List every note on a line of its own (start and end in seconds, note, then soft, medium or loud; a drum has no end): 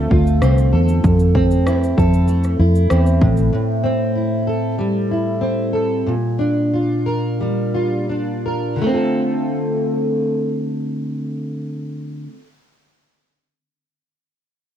0.00 1.03 D3 medium
0.00 2.27 A3 medium
0.00 0.42 C4 medium
0.00 0.72 A4 medium
0.10 0.39 D2 medium
0.10 1.67 F4 medium
0.10 kick medium
0.27 shaker soft
0.42 0.70 C2 medium
0.42 1.35 C4 medium
0.42 cross-stick medium
0.42 shaker medium
0.58 shaker soft
0.72 1.01 E2 medium
0.72 1.97 A4 medium
0.89 shaker soft
1.04 1.93 F2 medium
1.04 kick medium
1.04 shaker medium
1.20 shaker soft
1.35 2.90 C4 medium
1.35 kick medium
1.51 shaker soft
1.67 2.59 E4 medium
1.67 cross-stick medium
1.67 shaker medium
1.84 shaker soft
1.98 2.56 F2 medium
1.98 4.47 A4 medium
1.98 kick medium
1.98 shaker soft
2.14 shaker medium
2.28 4.78 A3 medium
2.28 shaker medium
2.44 cross-stick soft
2.44 shaker soft
2.59 2.88 F2 medium
2.59 4.15 E4 medium
2.75 shaker soft
2.90 3.19 E2 medium
2.90 3.83 C4 medium
2.90 cross-stick medium
2.90 shaker medium
3.07 shaker soft
3.22 3.50 A1 medium
3.22 3.52 A2 medium
3.22 kick medium
3.37 shaker soft
3.53 6.06 A2 medium
3.84 5.40 C4 medium
4.16 5.10 E4 soft
4.47 5.72 A4 medium
4.79 6.76 G3 medium
5.11 6.14 E4 soft
5.41 6.12 C4 soft
5.73 6.12 A4 soft
6.07 8.81 A#2 medium
6.39 8.09 D4 medium
6.73 7.74 F4 soft
7.06 8.45 A#4 medium
7.41 8.81 G3 medium
7.74 8.90 F4 soft
8.10 8.86 D4 soft
8.46 8.89 A#4 soft
8.76 12.26 D3 medium
8.82 12.32 A3 medium
8.86 12.36 C4 medium
8.91 12.41 F4 medium
8.91 12.44 A4 medium